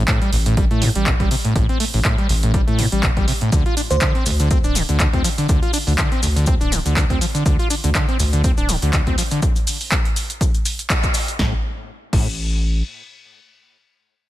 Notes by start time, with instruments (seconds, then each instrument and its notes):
0.08 acid bass A2, kick, clap, closed hi-hat
0.22 acid bass G3, closed hi-hat
0.33 sub bass A1, acid bass A1, open hi-hat
0.46 acid bass A2, closed hi-hat
0.57 acid bass G3, kick, closed hi-hat
0.71 sub bass A2, acid bass A3, closed hi-hat
0.82 acid bass A2, open hi-hat
0.95 sub bass A1, acid bass G3, closed hi-hat
1.06 acid bass A2, kick, clap, closed hi-hat
1.20 sub bass A1, acid bass G3, kick, closed hi-hat
1.31 acid bass C3, open hi-hat
1.44 acid bass A2, closed hi-hat
1.55 sub bass A1, acid bass A2, kick, closed hi-hat
1.69 acid bass C4, closed hi-hat
1.80 acid bass A3, open hi-hat
1.94 sub bass A1, acid bass A2, open hi-hat
2.05 acid bass A2, kick, clap, closed hi-hat
2.18 acid bass G3, closed hi-hat
2.29 acid bass A1, sub bass A1, open hi-hat
2.43 acid bass A2, closed hi-hat
2.54 acid bass G3, kick, closed hi-hat
2.67 sub bass A2, acid bass A3, closed hi-hat
2.79 acid bass A2, open hi-hat
2.92 sub bass A1, acid bass G3, closed hi-hat
3.03 acid bass A2, kick, clap, closed hi-hat
3.17 sub bass A1, acid bass G3, kick, closed hi-hat
3.28 acid bass C3, open hi-hat
3.41 acid bass A2, closed hi-hat
3.52 sub bass D2, acid bass D3, kick, closed hi-hat, maracas
3.66 acid bass F4, closed hi-hat
3.77 acid bass D4, open hi-hat, maracas
3.90 sub bass D2, acid bass D3, fm electric piano C5, closed hi-hat, maracas
4.01 acid bass D3, kick, clap, closed hi-hat, maracas
4.15 acid bass C4, closed hi-hat
4.26 acid bass D2, sub bass D2, open hi-hat, maracas
4.40 acid bass D3, closed hi-hat, maracas
4.51 acid bass C4, kick, closed hi-hat, maracas
4.64 sub bass D1, acid bass D4, closed hi-hat, maracas
4.75 acid bass D3, open hi-hat, maracas
4.89 sub bass D2, acid bass D3, closed hi-hat, maracas
4.99 acid bass D3, kick, clap, closed hi-hat, maracas
5.13 sub bass D2, acid bass C4, kick, closed hi-hat
5.24 acid bass F3, open hi-hat, maracas
5.38 acid bass D3, closed hi-hat, maracas
5.49 sub bass D2, kick, closed hi-hat, maracas
5.62 acid bass F4, closed hi-hat
5.73 acid bass D4, open hi-hat, maracas
5.87 sub bass D2, acid bass D3, open hi-hat, maracas
5.98 acid bass D3, kick, clap, closed hi-hat, maracas
6.12 acid bass C4, closed hi-hat
6.23 acid bass D2, sub bass D2, open hi-hat, maracas
6.36 acid bass D3, closed hi-hat, maracas
6.46 acid bass C4, kick, closed hi-hat, maracas
6.61 sub bass D1, acid bass D4, closed hi-hat, maracas
6.72 acid bass D3, open hi-hat, maracas
6.85 sub bass D2, acid bass D3, closed hi-hat, maracas
6.97 kick, clap, closed hi-hat, maracas
7.10 sub bass D2, acid bass C4, kick, closed hi-hat
7.21 acid bass F3, open hi-hat, maracas
7.34 acid bass D3, closed hi-hat, maracas
7.46 sub bass D2, acid bass D3, kick, closed hi-hat, maracas
7.59 acid bass F4, closed hi-hat
7.70 acid bass D4, open hi-hat, maracas
7.84 sub bass D2, acid bass D3, closed hi-hat, maracas
7.95 acid bass D3, kick, clap, closed hi-hat, maracas
8.08 acid bass C4, closed hi-hat
8.19 sub bass D2, acid bass D2, open hi-hat, maracas
8.33 acid bass D3, closed hi-hat, maracas
8.44 acid bass C4, kick, closed hi-hat, maracas
8.57 sub bass D1, acid bass D4, closed hi-hat, maracas
8.69 acid bass D3, open hi-hat, maracas
8.82 sub bass D2, acid bass D3, closed hi-hat, maracas
8.93 kick, clap, closed hi-hat, maracas
9.07 sub bass D2, acid bass C4, kick, closed hi-hat
9.18 acid bass F3, open hi-hat, maracas
9.31 acid bass D3, closed hi-hat, maracas
9.42 kick, closed hi-hat, maracas
9.56 closed hi-hat, maracas
9.67 open hi-hat, maracas
9.81 open hi-hat, maracas
9.92 kick, clap, closed hi-hat, maracas
10.05 closed hi-hat
10.16 open hi-hat, maracas
10.30 closed hi-hat, maracas
10.41 kick, closed hi-hat, maracas
10.54 closed hi-hat, maracas
10.65 open hi-hat, maracas
10.79 closed hi-hat, maracas
10.90 kick, clap, closed hi-hat, maracas
11.03 kick, closed hi-hat, maracas
11.14 open hi-hat, maracas
11.28 closed hi-hat, maracas
11.39 sub bass A1, acid bass A2, kick, snare
12.13 sub bass A1, acid bass A2, kick, crash